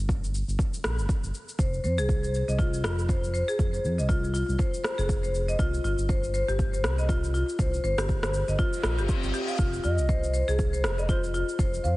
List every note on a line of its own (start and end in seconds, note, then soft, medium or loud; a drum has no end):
0.00 0.43 G1 medium
0.09 kick loud
0.09 shaker medium
0.24 shaker soft
0.35 shaker medium
0.48 0.57 G1 medium
0.48 shaker soft
0.59 kick loud
0.59 shaker medium
0.74 shaker medium
0.84 1.00 A#1 medium
0.84 cross-stick medium
0.84 shaker soft
0.98 1.07 G1 medium
0.98 shaker soft
1.09 kick loud
1.09 shaker medium
1.23 1.32 G1 medium
1.23 shaker medium
1.34 shaker medium
1.49 shaker medium
1.59 1.79 F1 loud
1.59 1.67 C5 medium
1.59 kick loud
1.59 shaker medium
1.74 shaker soft
1.84 2.00 F2 medium
1.84 1.97 C5 medium
1.84 shaker soft
1.98 2.43 C2 medium
1.98 2.08 G#4 loud
1.98 shaker medium
2.09 kick loud
2.09 shaker medium
2.23 2.33 C5 medium
2.23 shaker medium
2.34 shaker medium
2.48 2.86 C2 medium
2.48 2.58 D#5 medium
2.48 shaker soft
2.59 2.72 F4 medium
2.59 kick loud
2.59 shaker soft
2.74 shaker medium
2.84 3.43 F1 medium
2.84 2.98 F4 medium
2.84 cross-stick medium
2.84 shaker soft
2.99 shaker soft
3.09 3.17 C5 medium
3.09 kick loud
3.09 shaker medium
3.24 shaker soft
3.34 3.47 C5 medium
3.34 shaker soft
3.48 3.58 G#4 medium
3.48 shaker medium
3.59 3.79 F1 medium
3.59 kick loud
3.59 shaker medium
3.73 3.83 C5 medium
3.73 shaker soft
3.84 4.00 F2 medium
3.84 shaker soft
3.98 4.43 C2 medium
3.98 4.08 D#5 medium
3.98 shaker medium
4.09 4.22 F4 loud
4.09 kick loud
4.09 shaker soft
4.24 shaker soft
4.34 4.48 F4 medium
4.34 shaker medium
4.49 4.57 C2 medium
4.49 shaker soft
4.59 4.67 C5 medium
4.59 kick loud
4.59 shaker soft
4.74 shaker medium
4.84 4.97 C5 medium
4.84 cross-stick medium
4.84 shaker soft
4.98 5.55 F1 loud
4.98 5.08 G#4 medium
4.98 shaker soft
5.09 kick loud
5.09 shaker medium
5.23 5.33 C5 medium
5.23 shaker soft
5.35 shaker soft
5.48 5.58 D#5 medium
5.48 shaker soft
5.59 5.79 C2 loud
5.59 5.72 F4 medium
5.59 kick loud
5.59 shaker medium
5.74 shaker soft
5.84 5.95 G1 medium
5.84 5.98 F4 medium
5.84 shaker soft
5.99 6.43 G1 medium
5.99 shaker medium
6.09 6.17 C5 medium
6.09 kick loud
6.09 shaker soft
6.24 shaker soft
6.34 6.47 C5 medium
6.34 shaker medium
6.48 6.86 G1 medium
6.48 6.58 G4 loud
6.48 shaker soft
6.59 kick loud
6.59 shaker soft
6.73 6.83 C5 medium
6.73 shaker medium
6.84 7.43 C2 medium
6.84 cross-stick medium
6.84 shaker soft
6.98 7.08 D#5 medium
6.98 shaker soft
7.09 7.22 F4 medium
7.09 kick loud
7.09 shaker medium
7.24 shaker soft
7.34 7.48 F4 medium
7.34 shaker soft
7.49 shaker soft
7.59 7.79 C2 medium
7.59 7.67 C5 medium
7.59 kick loud
7.59 shaker medium
7.74 shaker soft
7.84 7.95 G1 medium
7.84 7.97 C5 medium
7.84 shaker soft
7.98 8.43 G1 medium
7.98 8.08 G4 loud
7.98 cross-stick medium
7.98 shaker medium
8.09 kick loud
8.09 shaker soft
8.23 8.33 C5 medium
8.23 cross-stick medium
8.23 shaker soft
8.34 shaker medium
8.48 8.57 G1 medium
8.48 8.58 D#5 medium
8.48 shaker soft
8.59 8.72 F4 loud
8.59 kick loud
8.59 reverse cymbal medium
8.59 shaker medium
8.73 shaker medium
8.83 9.00 A#1 medium
8.83 cross-stick medium
8.83 shaker soft
8.98 9.07 G1 medium
8.98 9.08 G4 medium
8.98 shaker soft
9.09 9.22 C4 medium
9.09 kick loud
9.09 shaker medium
9.23 9.32 G1 medium
9.23 shaker soft
9.34 9.48 G4 loud
9.34 shaker soft
9.48 9.58 F5 medium
9.48 shaker soft
9.59 9.79 F1 medium
9.59 9.72 F4 medium
9.59 kick loud
9.59 shaker medium
9.74 shaker medium
9.84 10.00 F2 medium
9.84 9.98 F4 medium
9.84 10.55 D#5 medium
9.84 shaker soft
9.98 10.43 C2 medium
9.98 shaker medium
10.09 10.17 C5 medium
10.09 kick loud
10.09 shaker medium
10.24 shaker medium
10.34 10.47 C5 medium
10.34 shaker medium
10.48 10.85 C2 medium
10.48 10.58 G#4 loud
10.48 shaker soft
10.59 kick loud
10.59 shaker soft
10.73 10.83 C5 medium
10.73 shaker medium
10.84 11.43 F1 medium
10.84 cross-stick medium
10.84 shaker soft
10.98 11.07 D#5 medium
10.98 11.08 D#5 medium
10.98 shaker soft
11.09 11.22 F4 loud
11.09 11.25 C5 medium
11.09 kick loud
11.09 shaker medium
11.24 shaker soft
11.34 11.48 F4 medium
11.34 shaker soft
11.49 shaker medium
11.59 11.79 F1 loud
11.59 11.67 C5 medium
11.59 kick loud
11.59 shaker medium
11.74 shaker medium
11.84 11.97 F2 medium
11.84 11.97 C5 medium
11.84 11.93 F5 medium
11.84 shaker medium